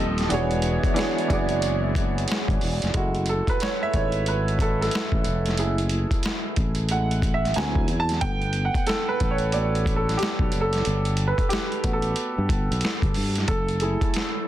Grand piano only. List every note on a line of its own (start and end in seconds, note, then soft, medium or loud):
0.00 0.25 F3 medium
0.00 0.26 C4 medium
0.00 0.26 G4 medium
0.00 0.27 A4 medium
0.00 0.28 D#5 medium
0.28 0.91 E3 medium
0.28 0.92 B3 medium
0.28 0.92 D4 medium
0.28 0.93 F#4 medium
0.28 0.93 G#4 medium
0.34 0.94 C#5 loud
0.94 1.26 E3 medium
0.94 1.26 B3 medium
0.94 1.27 D4 medium
0.94 1.27 F#4 medium
0.94 1.28 G#4 medium
0.99 1.28 C#5 loud
1.28 2.52 E3 medium
1.28 2.53 B3 medium
1.28 2.53 D4 medium
1.28 2.54 F#4 medium
1.28 2.54 G#4 medium
1.33 2.55 D5 medium
2.94 3.89 G#3 medium
2.94 3.89 A3 soft
2.94 3.89 E4 medium
2.94 3.29 F#4 medium
3.29 3.47 A4 medium
3.50 3.60 B4 medium
3.62 3.80 C#5 medium
3.83 3.94 E5 loud
3.94 4.23 G#3 soft
3.94 4.24 A3 soft
3.94 4.24 E4 soft
3.94 4.25 C#5 medium
4.28 4.61 B4 medium
4.61 4.80 A4 medium
4.81 6.41 A4 medium
5.59 6.05 A3 soft
5.59 6.05 E4 medium
5.59 6.05 G#4 medium
6.91 7.20 G#3 soft
6.91 7.20 A3 soft
6.91 7.20 E4 soft
6.91 7.36 F#5 medium
7.34 7.56 E5 medium
7.56 8.18 F#3 medium
7.56 8.19 C4 medium
7.56 8.19 E4 medium
7.56 8.01 G#5 medium
8.00 8.22 A5 loud
8.21 9.53 A3 medium
8.21 9.53 B3 soft
8.21 8.63 F#5 medium
8.21 8.66 G5 loud
8.65 8.88 F#5 medium
8.87 9.07 A4 medium
9.09 9.32 B4 medium
9.31 9.36 C#5 medium
9.53 9.83 A3 soft
9.53 9.84 B3 soft
9.53 9.84 F#4 soft
9.53 9.94 D5 medium
9.96 10.19 A4 medium
10.17 10.59 G4 medium
10.61 11.24 A4 medium
11.28 11.51 B4 medium
11.49 11.91 G4 medium
11.83 12.78 A3 soft
11.83 12.79 B3 soft
11.83 12.79 F#4 medium
11.93 12.89 A4 medium
13.48 14.43 A4 medium
13.81 14.48 A3 soft
13.81 14.48 E4 medium
13.81 14.48 G#4 soft